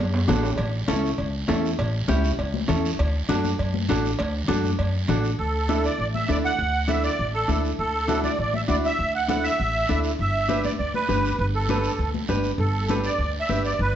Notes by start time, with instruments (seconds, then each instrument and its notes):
0.00 upright bass F#2, high conga
0.14 low timbale
0.28 upright bass A1, clean electric guitar D4 F#4 A4, cowbell, high conga, low conga, low timbale, short guiro
0.43 low timbale, short guiro
0.58 upright bass A1, cowbell, high conga, long guiro
0.88 upright bass C#2, clean electric guitar C#4 E4 A4, cowbell, high conga, short guiro
1.05 short guiro
1.18 upright bass C#2, cowbell, high conga, long guiro
1.48 upright bass E2, clean electric guitar C#4 E4 A4, cowbell, high conga, low timbale, short guiro
1.65 short guiro
1.79 upright bass A1, cowbell, high conga, long guiro
2.08 upright bass C#2, clean electric guitar C#4 E4 G4, cowbell, high conga, short guiro
2.24 short guiro
2.39 upright bass C#2, cowbell, high conga, long guiro
2.54 high conga
2.68 upright bass E2, clean electric guitar C#4 E4 A4, cowbell, high conga, low conga, short guiro
2.85 short guiro
2.99 upright bass D2, cowbell, high conga, long guiro
3.29 upright bass F#2, clean electric guitar D4 F#4 A4, cowbell, high conga, short guiro
3.44 high conga, short guiro
3.59 upright bass F#2, cowbell, high conga, long guiro
3.74 high conga
3.89 upright bass A1, clean electric guitar D4 F#4 A4, cowbell, high conga, short guiro
4.05 short guiro
4.19 upright bass D2, cowbell, high conga, long guiro
4.48 upright bass F#2, clean electric guitar D4 F#4 A4, cowbell, high conga, short guiro
4.64 high conga, short guiro
4.79 upright bass F#2, cowbell, high conga, long guiro
5.08 upright bass A1, clean electric guitar D4 F#4 A4, cowbell, high conga, low conga, short guiro
5.24 short guiro
5.39 upright bass D2, accordion A4, high conga, long guiro
5.69 clean electric guitar D4 E4 A4, high conga, short guiro
5.84 accordion D5, short guiro
5.99 upright bass A1, accordion D5, high conga, long guiro
6.15 accordion E5, high conga
6.29 upright bass D2, clean electric guitar D4 E4 A4, accordion D5, high conga, short guiro
6.45 accordion F#5, short guiro
6.59 upright bass D2, high conga, long guiro
6.88 clean electric guitar D4 E4 A4, accordion E5, high conga, short guiro
7.04 accordion D5, short guiro
7.19 upright bass A1, high conga, long guiro
7.34 accordion A4
7.48 upright bass D2, clean electric guitar D4 E4 A4, high conga, short guiro
7.64 short guiro
7.79 upright bass D2, accordion A4, high conga, long guiro
8.08 clean electric guitar D4 E4 F#4, high conga, short guiro
8.24 accordion D5, high conga, short guiro
8.38 upright bass A1, accordion D5, high conga, long guiro
8.54 accordion E5, high conga
8.68 upright bass D2, clean electric guitar D4 E4 F#4, accordion D5, high conga, short guiro
8.84 accordion E5, short guiro
8.98 upright bass D2, high conga, long guiro
9.15 accordion F#5
9.28 clean electric guitar D4 E4 A4, accordion F#5, high conga, short guiro
9.43 accordion E5, short guiro
9.59 upright bass A1, high conga, long guiro
9.89 upright bass D2, clean electric guitar D4 E4 A4, high conga, short guiro
10.04 short guiro
10.19 upright bass G1, accordion E5, high conga, long guiro
10.49 clean electric guitar D4 G4 B4, high conga, short guiro
10.64 accordion D5, high conga, short guiro
10.79 upright bass D2, accordion D5, high conga, long guiro
10.94 accordion B4, high conga
11.09 upright bass G1, clean electric guitar D4 G4 B4, high conga, short guiro
11.25 short guiro
11.39 upright bass G1, accordion B4, high conga, long guiro
11.55 accordion A4
11.69 clean electric guitar D4 G4 B4, high conga, short guiro
11.84 short guiro
11.99 upright bass D2, high conga, long guiro
12.14 high conga
12.28 upright bass G1, clean electric guitar D4 G4 B4, high conga, short guiro
12.43 short guiro
12.58 upright bass G1, accordion A4, high conga, long guiro
12.88 clean electric guitar D4 G4 B4, high conga, short guiro
13.04 accordion D5, short guiro
13.18 upright bass D2, high conga, long guiro
13.40 accordion E5
13.49 upright bass G1, clean electric guitar D4 G4 B4, high conga, short guiro
13.65 accordion D5, short guiro
13.79 upright bass G1, accordion B4, high conga